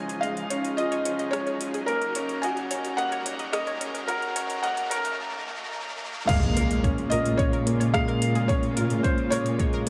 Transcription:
0.00 6.25 C#3 medium
0.00 1.85 F3 medium
0.00 0.23 G#3 medium
0.00 0.51 C#4 medium
0.00 6.25 D#4 medium
0.00 0.78 F4 medium
0.00 1.85 G#4 medium
0.00 0.24 G#5 loud
0.00 riser medium
0.09 closed hi-hat soft
0.21 0.39 G#3 medium
0.21 0.29 D#5 medium
0.21 0.79 F5 medium
0.21 closed hi-hat soft
0.37 closed hi-hat soft
0.50 0.77 C#4 medium
0.50 0.60 C#5 medium
0.50 closed hi-hat medium
0.65 closed hi-hat soft
0.77 0.94 F4 loud
0.77 1.35 D#5 medium
0.77 0.87 D#5 medium
0.77 closed hi-hat soft
0.92 0.96 C#5 medium
0.92 closed hi-hat soft
1.05 1.32 C#4 medium
1.05 closed hi-hat medium
1.19 1.23 D#5 medium
1.19 closed hi-hat soft
1.31 1.60 G#3 medium
1.31 1.70 C#5 medium
1.31 cross-stick medium
1.31 closed hi-hat soft
1.47 1.51 C#5 medium
1.47 closed hi-hat soft
1.61 1.87 C#4 medium
1.61 closed hi-hat medium
1.74 1.78 G#4 medium
1.74 closed hi-hat soft
1.86 6.25 F#3 medium
1.86 2.04 A#3 medium
1.86 2.44 A#4 medium
1.86 6.25 A#4 medium
1.86 1.98 A#4 medium
1.86 closed hi-hat soft
2.02 closed hi-hat soft
2.15 2.42 C#4 loud
2.15 2.22 C#5 medium
2.15 closed hi-hat medium
2.29 closed hi-hat soft
2.42 2.59 F#4 loud
2.42 2.50 D#5 medium
2.42 2.94 G#5 medium
2.42 closed hi-hat soft
2.57 closed hi-hat soft
2.71 2.97 C#4 medium
2.71 2.80 C#5 medium
2.71 closed hi-hat medium
2.85 closed hi-hat soft
2.97 3.25 A#3 medium
2.97 3.08 D#5 medium
2.97 3.55 F#5 loud
2.97 closed hi-hat soft
3.12 3.16 C#5 medium
3.12 closed hi-hat soft
3.26 3.52 C#4 medium
3.26 closed hi-hat medium
3.39 3.43 D#5 medium
3.39 closed hi-hat soft
3.52 3.69 A#3 medium
3.52 3.92 D#5 medium
3.52 cross-stick medium
3.52 closed hi-hat soft
3.67 3.71 C#5 medium
3.67 closed hi-hat soft
3.81 4.07 C#4 medium
3.81 closed hi-hat medium
3.94 3.98 A#4 medium
3.94 closed hi-hat soft
4.07 4.24 F#4 loud
4.07 4.65 A#4 medium
4.07 4.18 A#4 medium
4.07 closed hi-hat soft
4.22 closed hi-hat soft
4.36 4.62 C#4 loud
4.36 4.42 C#5 medium
4.36 closed hi-hat medium
4.50 closed hi-hat soft
4.63 4.90 A#3 medium
4.63 4.70 D#5 medium
4.63 4.92 F#5 medium
4.63 closed hi-hat soft
4.77 closed hi-hat soft
4.90 5.17 C#4 medium
4.90 5.16 A#4 medium
4.90 5.00 C#5 medium
4.90 closed hi-hat medium
5.05 closed hi-hat soft
6.27 9.89 A#2 medium
6.27 9.89 C#3 medium
6.27 6.55 G#3 loud
6.27 9.89 G#3 medium
6.27 9.89 A#3 medium
6.27 9.89 F4 medium
6.27 6.38 G#4 medium
6.27 6.79 F5 loud
6.27 kick loud
6.27 closed hi-hat soft
6.27 crash loud
6.27 impact medium
6.43 closed hi-hat soft
6.56 6.72 A#3 medium
6.56 6.63 A#4 medium
6.56 closed hi-hat medium
6.71 closed hi-hat soft
6.84 7.00 C#4 medium
6.84 6.90 C#5 medium
6.84 kick loud
6.84 closed hi-hat soft
6.98 closed hi-hat soft
7.10 7.38 F4 medium
7.10 7.21 A#4 medium
7.10 7.39 D#5 loud
7.10 closed hi-hat medium
7.26 closed hi-hat soft
7.37 7.65 C#4 medium
7.37 7.95 C#5 loud
7.37 7.48 C#5 medium
7.37 kick loud
7.37 closed hi-hat soft
7.53 7.57 A#4 medium
7.53 closed hi-hat soft
7.66 7.93 A#3 medium
7.66 closed hi-hat medium
7.80 7.84 C#5 medium
7.80 closed hi-hat soft
7.94 8.20 G#3 loud
7.94 8.51 F5 loud
7.94 kick loud
7.94 cross-stick medium
7.94 closed hi-hat soft
8.08 8.12 A#4 medium
8.08 closed hi-hat soft
8.21 8.37 A#3 medium
8.21 closed hi-hat medium
8.35 8.39 G#4 medium
8.35 closed hi-hat soft
8.48 8.65 C#4 loud
8.48 8.58 G#4 medium
8.48 9.05 C#5 loud
8.48 kick loud
8.48 closed hi-hat soft
8.63 closed hi-hat soft
8.76 9.03 F4 loud
8.76 8.83 A#4 medium
8.76 closed hi-hat medium
8.90 closed hi-hat soft
9.03 9.30 C#4 medium
9.03 9.32 C5 medium
9.03 9.10 C#5 medium
9.03 kick loud
9.03 closed hi-hat soft
9.18 closed hi-hat soft
9.30 9.58 A#3 medium
9.30 9.41 A#4 medium
9.30 9.89 C#5 loud
9.30 closed hi-hat medium
9.46 closed hi-hat soft
9.59 9.85 G#3 loud
9.59 9.69 C#5 medium
9.59 kick loud
9.59 closed hi-hat soft
9.73 9.77 A#4 loud
9.73 closed hi-hat soft

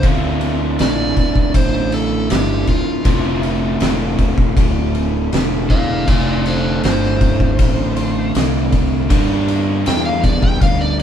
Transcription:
0.03 3.04 D2 medium
0.03 0.77 D2 medium
0.03 3.03 A2 medium
0.03 3.05 D3 medium
0.03 3.06 A3 medium
0.03 3.06 C4 loud
0.03 3.06 F4 medium
0.03 kick loud
0.03 ride medium
0.41 ride medium
0.79 1.15 A#1 medium
0.79 1.53 D5 medium
0.79 snare loud
0.79 ride medium
1.17 muted fingered electric bass stroke soft
1.17 kick medium
1.17 ride medium
1.36 kick medium
1.54 2.28 A1 medium
1.54 1.92 C5 medium
1.54 kick loud
1.54 ride loud
1.92 2.30 A4 medium
1.92 ride medium
2.30 2.65 G1 medium
2.30 2.67 G4 medium
2.30 snare loud
2.30 ride loud
2.67 3.42 F4 medium
2.67 muted fingered electric bass stroke soft
2.67 kick medium
2.67 ride medium
3.04 3.79 F1 medium
3.04 6.05 D2 medium
3.04 6.05 A2 medium
3.04 6.05 D3 medium
3.04 6.06 A3 medium
3.04 6.06 C4 medium
3.04 6.09 F4 medium
3.04 kick loud
3.04 ride medium
3.43 ride medium
3.80 4.54 E1 medium
3.80 snare loud
3.80 ride medium
4.18 kick medium
4.18 ride medium
4.38 kick medium
4.57 5.30 D1 medium
4.57 kick loud
4.57 ride medium
4.95 ride medium
5.33 6.06 E1 medium
5.33 snare loud
5.33 ride medium
5.70 6.07 D5 medium
5.70 6.07 F5 medium
5.70 kick medium
5.70 ride medium
6.07 6.81 F1 medium
6.07 9.07 D2 medium
6.07 9.08 A2 medium
6.07 9.08 D3 medium
6.07 9.08 A3 medium
6.07 9.08 C4 medium
6.07 6.43 F4 medium
6.07 9.10 F4 medium
6.07 6.45 D5 medium
6.07 kick loud
6.07 ride medium
6.46 6.81 A4 medium
6.46 6.83 C5 medium
6.46 ride medium
6.83 7.57 G1 medium
6.83 8.31 C5 loud
6.83 snare loud
6.83 ride medium
7.04 snare soft
7.21 kick medium
7.21 ride medium
7.40 kick medium
7.59 8.32 A1 medium
7.59 kick loud
7.59 ride loud
7.96 ride medium
8.35 9.09 C2 medium
8.35 snare loud
8.35 ride medium
8.72 kick medium
8.72 ride medium
9.09 11.03 G2 medium
9.09 9.84 G2 medium
9.09 11.03 D3 medium
9.09 11.03 G3 medium
9.09 11.03 A#3 medium
9.09 11.03 D4 medium
9.09 11.03 G4 medium
9.09 kick loud
9.09 ride loud
9.48 ride medium
9.86 10.60 E2 medium
9.86 10.05 G5 medium
9.86 snare loud
9.86 ride medium
10.05 10.23 F5 medium
10.24 10.42 D5 medium
10.24 kick medium
10.24 ride medium
10.43 10.61 G5 loud
10.43 kick medium
10.61 11.03 D2 medium
10.61 10.80 F5 medium
10.61 kick loud
10.61 ride medium
10.81 10.99 D5 medium
10.99 ride medium

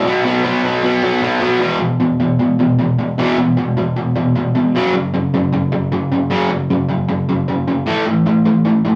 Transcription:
0.05 0.23 B2 loud
0.05 0.24 F#3 loud
0.05 0.25 B3 loud
0.24 0.43 B2 medium
0.24 0.44 F#3 medium
0.24 0.44 B3 loud
0.44 0.63 B2 loud
0.44 0.63 F#3 loud
0.44 0.64 B3 loud
0.64 0.82 B2 medium
0.64 0.82 F#3 medium
0.64 0.83 B3 loud
0.83 1.01 B2 medium
0.83 1.02 F#3 medium
0.83 1.03 B3 loud
1.03 1.20 B2 medium
1.03 1.22 F#3 medium
1.03 1.22 B3 medium
1.22 1.39 B2 medium
1.22 1.40 F#3 loud
1.22 1.41 B3 medium
1.40 1.60 B2 medium
1.40 1.60 F#3 medium
1.40 1.60 B3 medium
1.61 1.79 E2 loud
1.61 1.80 B2 loud
1.61 1.80 E3 medium
1.81 1.98 E2 medium
1.81 1.99 B2 medium
2.00 2.18 E2 medium
2.00 2.18 B2 medium
2.20 2.38 E2 medium
2.20 2.38 B2 medium
2.39 2.57 E2 medium
2.39 2.57 B2 medium
2.59 2.77 E2 medium
2.59 2.77 B2 medium
2.79 2.96 E2 medium
2.79 2.97 B2 medium
2.99 3.16 E2 medium
2.99 3.16 B2 medium
3.18 3.36 E2 loud
3.18 3.37 B2 loud
3.18 3.37 E3 loud
3.38 3.55 E2 medium
3.38 3.56 B2 medium
3.57 3.74 E2 medium
3.57 3.75 B2 loud
3.77 3.94 E2 medium
3.77 3.95 B2 medium
3.96 4.14 E2 medium
3.96 4.14 B2 medium
4.16 4.33 E2 medium
4.16 4.33 B2 medium
4.35 4.53 E2 medium
4.35 4.53 B2 medium
4.55 4.72 E2 medium
4.55 4.73 B2 medium
4.75 4.92 F#2 loud
4.75 4.93 C#3 loud
4.75 4.94 F#3 loud
4.94 5.11 F#2 medium
4.94 5.12 C#3 medium
5.14 5.31 F#2 medium
5.14 5.31 C#3 medium
5.34 5.51 F#2 medium
5.34 5.51 C#3 loud
5.53 5.70 F#2 medium
5.53 5.70 C#3 medium
5.72 5.89 F#2 medium
5.72 5.90 C#3 medium
5.92 6.09 F#2 medium
5.92 6.09 C#3 medium
6.12 6.29 F#2 medium
6.12 6.29 C#3 medium
6.30 6.49 F#2 medium
6.30 6.49 C#3 loud
6.30 6.49 F#3 loud
6.50 6.67 F#2 medium
6.50 6.68 C#3 medium
6.70 6.87 F#2 medium
6.70 6.88 C#3 medium
6.89 7.06 F#2 medium
6.89 7.07 C#3 medium
7.09 7.26 F#2 medium
7.09 7.26 C#3 medium
7.29 7.46 F#2 medium
7.29 7.46 C#3 medium
7.48 7.66 F#2 medium
7.48 7.66 C#3 medium
7.68 7.85 F#2 medium
7.68 7.85 C#3 medium
7.86 8.05 A2 loud
7.86 8.05 E3 loud
7.86 8.06 A3 loud
8.06 8.24 A2 medium
8.06 8.24 E3 medium
8.26 8.43 A2 medium
8.26 8.44 E3 medium
8.45 8.63 A2 medium
8.45 8.63 E3 medium
8.65 8.83 A2 medium
8.65 8.83 E3 medium
8.85 8.95 A2 medium
8.85 8.95 E3 medium

